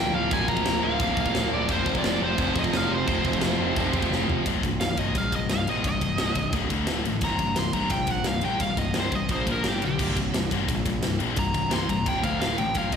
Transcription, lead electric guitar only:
0.00 0.14 G5 loud
0.15 0.33 F5 medium
0.33 0.50 G#5 loud
0.49 0.84 A#5 loud
0.83 1.48 F5 loud
1.54 1.71 D5 medium
1.71 1.95 C5 medium
1.98 2.21 D5 medium
2.24 2.58 C5 loud
2.59 2.77 D#5 medium
2.77 2.93 F5 medium
2.92 4.08 C5 medium
4.80 4.99 F5 medium
4.99 5.18 D#5 medium
5.18 5.33 F5 medium
5.36 5.51 D#5 medium
5.53 5.68 F5 medium
5.70 5.85 D#5 medium
5.88 6.53 D#5 medium
7.24 7.57 A#5 medium
7.59 7.73 C6 medium
7.73 7.91 A#5 medium
7.91 8.08 G5 medium
8.11 8.27 F#5 medium
8.27 8.44 F5 medium
8.45 8.61 G5 medium
8.60 8.78 F5 medium
8.78 8.95 D#5 medium
9.00 9.15 C5 medium
9.15 9.31 D#5 medium
9.32 9.48 C5 medium
9.52 9.67 A#4 medium
9.68 9.84 G4 medium
9.85 10.17 G4 medium
11.39 11.72 A#5 loud
11.74 11.90 C6 medium
11.90 12.08 A#5 loud
12.08 12.24 G5 medium
12.23 12.40 F5 medium
12.41 12.58 F5 medium
12.58 12.75 G5 medium
12.77 12.93 F5 medium
12.93 12.96 D#5 medium

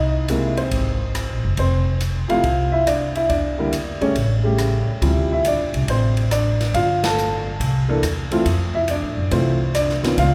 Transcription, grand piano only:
0.00 0.26 D#4 medium
0.00 0.25 D#5 medium
0.29 0.55 C3 medium
0.29 0.55 G#3 medium
0.29 0.56 A#3 medium
0.29 0.56 E4 medium
0.58 1.41 C4 medium
0.58 1.40 C5 medium
1.59 1.99 C4 medium
1.59 1.99 C5 medium
2.28 2.42 C3 medium
2.28 2.42 F3 medium
2.28 2.42 A3 medium
2.28 2.42 E4 medium
2.28 2.71 F4 medium
2.28 2.70 F5 medium
2.72 2.86 E4 medium
2.72 2.86 E5 medium
2.87 3.14 D4 medium
2.87 3.17 D5 medium
3.15 3.29 E4 medium
3.15 3.29 E5 medium
3.29 3.98 D4 medium
3.29 4.04 D5 medium
3.58 3.71 D3 medium
3.58 3.71 G3 medium
3.58 3.72 A#3 medium
3.58 3.72 E4 medium
4.01 4.14 C#3 medium
4.01 4.14 G3 medium
4.01 4.14 A3 medium
4.01 4.14 C#4 medium
4.01 4.84 C#5 medium
4.44 4.98 C#3 medium
4.44 4.99 G3 medium
4.44 4.99 A3 medium
4.44 4.99 G4 medium
5.01 6.22 C3 medium
5.01 6.22 F3 medium
5.01 6.22 G3 medium
5.01 5.30 E4 medium
5.32 5.44 E4 medium
5.32 5.45 E5 medium
5.47 5.86 D4 medium
5.47 5.86 D5 medium
5.90 6.29 C4 medium
5.90 6.29 C5 medium
6.32 6.72 D4 medium
6.32 6.75 D5 medium
6.74 7.02 F4 medium
6.74 7.01 F5 medium
7.04 7.45 A4 medium
7.04 7.44 A5 medium
7.88 8.01 E3 medium
7.88 8.01 A#3 medium
7.88 8.02 D4 medium
7.88 8.02 A4 medium
8.31 8.44 E3 medium
8.31 8.44 A3 medium
8.31 8.44 C4 medium
8.31 8.45 F4 medium
8.75 8.81 E4 medium
8.75 8.80 E5 medium
8.90 9.30 D4 medium
8.90 9.34 D5 medium
9.31 9.57 E3 medium
9.31 9.57 A3 medium
9.31 9.58 C4 medium
9.31 9.58 F4 medium
9.31 9.76 C5 medium
9.75 10.16 D4 medium
9.75 10.19 D5 medium
10.03 10.16 D#3 medium
10.03 10.16 B3 medium
10.03 10.16 C#4 medium
10.03 10.17 F4 medium
10.19 10.34 F4 medium
10.19 10.34 F5 medium

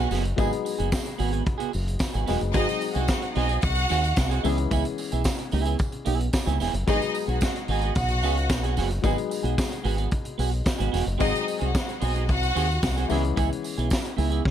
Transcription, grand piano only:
0.00 0.33 F#3 medium
0.00 0.33 G#3 medium
0.00 0.34 B3 medium
0.00 0.34 D#4 medium
0.00 0.34 G#4 medium
0.36 2.23 F#3 medium
0.36 2.23 G#3 medium
0.36 2.24 B3 medium
0.36 2.24 D#4 medium
0.36 2.24 G#4 medium
2.27 2.52 F#3 medium
2.27 2.52 G#3 soft
2.27 2.55 B3 soft
2.27 2.54 D#4 soft
2.27 2.54 G#4 medium
2.53 4.40 F#3 medium
2.53 4.40 G#3 medium
2.53 4.40 C4 medium
2.53 4.41 D#4 medium
2.53 4.41 G#4 medium
4.43 6.56 E3 medium
4.43 6.56 G#3 medium
4.43 6.57 B3 medium
4.43 6.57 C#4 medium
4.43 6.57 G#4 medium
6.87 8.99 F#3 medium
6.87 9.00 G#3 medium
6.87 9.00 B3 medium
6.87 9.00 D#4 medium
6.87 9.01 G#4 loud
9.02 11.15 F#3 medium
9.02 11.16 G#3 medium
9.02 11.16 B3 medium
9.02 11.16 D#4 medium
9.02 11.17 G#4 medium
11.19 13.05 F#3 medium
11.19 13.06 G#3 medium
11.19 13.06 C4 medium
11.19 13.06 D#4 medium
11.19 13.07 G#4 medium
13.08 14.51 E3 medium
13.08 14.51 G#3 medium
13.08 14.51 B3 medium
13.08 14.51 C#4 medium
13.08 14.51 G#4 medium

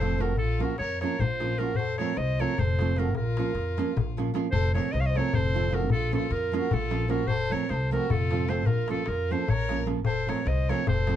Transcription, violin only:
0.00 0.23 A4 medium
0.21 0.38 F#4 medium
0.39 0.64 F4 medium
0.63 0.79 F#4 medium
0.80 1.01 A#4 medium
1.04 1.24 A#4 medium
1.23 1.63 F4 medium
1.62 1.81 F#4 medium
1.79 1.99 A4 medium
1.99 2.18 A#4 medium
2.16 2.41 C5 medium
2.40 2.62 A#4 medium
2.61 3.01 A4 medium
2.99 3.15 F#4 medium
3.15 4.14 F4 medium
4.53 4.74 A4 loud
4.76 4.96 A#4 medium
4.95 5.03 C5 medium
5.01 5.11 C#5 medium
5.09 5.20 C5 medium
5.19 5.38 A#4 medium
5.37 5.75 A4 medium
5.73 5.91 F#4 medium
5.92 6.13 F4 medium
6.17 6.34 F4 medium
6.34 6.55 F4 medium
6.58 6.75 F#4 medium
6.73 7.11 F4 medium
7.11 7.31 F#4 medium
7.30 7.54 A4 loud
7.53 7.74 A#4 medium
7.73 7.94 A4 medium
7.96 8.15 F#4 medium
8.13 8.52 F4 medium
8.50 8.68 A4 medium
8.67 8.90 F4 medium
8.91 9.10 F4 medium
9.10 9.33 F4 medium
9.31 9.53 A4 medium
9.51 9.82 A#4 medium
10.06 10.30 A4 loud
10.29 10.49 A#4 medium
10.47 10.71 C5 medium
10.69 10.87 A#4 medium
10.90 11.16 A4 medium

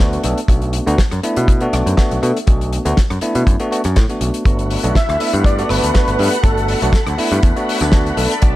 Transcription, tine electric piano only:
0.00 0.21 A3 medium
0.00 0.22 B3 medium
0.00 0.22 D4 medium
0.00 0.22 F#4 medium
0.24 0.39 A3 medium
0.24 0.39 B3 medium
0.24 0.39 D4 medium
0.24 0.39 A4 medium
0.49 0.84 A3 medium
0.49 0.84 B3 medium
0.49 0.84 D4 medium
0.49 0.84 F#4 medium
0.87 1.00 A3 medium
0.87 1.00 B3 medium
0.87 1.00 D4 medium
0.87 1.00 F#4 medium
1.23 1.58 A3 medium
1.23 1.59 B3 medium
1.23 1.59 D4 medium
1.23 1.59 E4 medium
1.61 1.95 A3 medium
1.61 1.95 B3 medium
1.61 1.95 D4 medium
1.61 1.95 F#4 loud
1.97 2.20 A3 medium
1.97 2.20 B3 medium
1.97 2.20 D4 medium
1.97 2.20 F#4 medium
2.22 2.37 A3 medium
2.22 2.37 B3 medium
2.22 2.37 D4 medium
2.22 2.38 A4 medium
2.47 2.82 A3 medium
2.47 2.82 B3 medium
2.47 2.82 D4 medium
2.47 2.83 F#4 medium
2.85 2.98 A3 medium
2.85 2.99 B3 medium
2.85 2.99 D4 medium
2.85 2.99 F#4 medium
3.22 3.57 A3 medium
3.22 3.57 B3 medium
3.22 3.57 D4 medium
3.22 3.57 E4 medium
3.59 3.69 A3 medium
3.59 3.69 B3 medium
3.59 3.69 D4 medium
3.59 3.69 F#4 loud
3.71 3.81 A3 medium
3.71 3.81 B3 medium
3.71 3.81 D4 medium
3.71 3.81 F#4 medium
4.09 4.43 A3 medium
4.09 4.43 B3 medium
4.09 4.43 D4 medium
4.09 4.43 F#4 medium
4.45 4.81 A3 medium
4.45 4.81 B3 medium
4.45 4.81 D4 medium
4.45 4.81 F#4 medium
4.83 4.97 A3 medium
4.83 4.97 B3 medium
4.83 4.97 D4 medium
4.83 4.97 F#4 medium
5.20 5.55 A3 medium
5.20 5.55 B3 medium
5.20 5.55 D4 medium
5.20 5.56 E4 medium
5.58 5.92 A3 medium
5.58 5.92 B3 medium
5.58 5.92 D4 medium
5.58 5.92 F#4 loud
5.94 6.16 A3 medium
5.94 6.16 B3 medium
5.94 6.17 D4 medium
5.94 6.17 F#4 medium
6.18 6.34 A3 medium
6.18 6.34 B3 medium
6.18 6.34 D4 medium
6.18 6.34 G4 medium
6.43 6.79 A3 medium
6.43 6.79 B3 medium
6.43 6.79 D4 medium
6.43 6.79 F#4 medium
6.82 6.95 A3 medium
6.82 6.95 B3 medium
6.82 6.95 D4 medium
6.82 6.96 F#4 medium
7.18 7.53 A3 medium
7.18 7.53 B3 medium
7.18 7.53 D4 medium
7.18 7.54 E4 loud
7.56 7.90 A3 medium
7.56 7.90 B3 medium
7.56 7.90 D4 medium
7.56 7.90 F#4 loud
7.93 8.15 A3 medium
7.93 8.15 B3 medium
7.93 8.15 D4 medium
7.93 8.15 F#4 loud
8.17 8.32 A3 medium
8.17 8.32 B3 medium
8.17 8.33 D4 medium
8.17 8.33 A4 medium
8.42 8.56 A3 medium
8.42 8.56 B3 medium
8.42 8.56 D4 medium
8.42 8.56 F#4 medium

